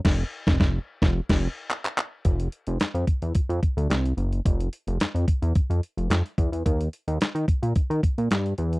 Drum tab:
CC |x--------x------|----------------|----------------|----------------|
HH |----------------|xxxxxxxxxxxxxxxx|xxxxxxxxxxxxxxxx|xxxxxxxxxxxxxxxx|
CP |------------xxx-|----x-------x---|----x-------x---|----x-------x---|
SD |o--oo--o-o------|----o-------o---|----o-------o---|----o-------o---|
BD |o--oo--o-o------|o-----o-o-o-----|o-----o-o-----o-|o-----o-o-o-----|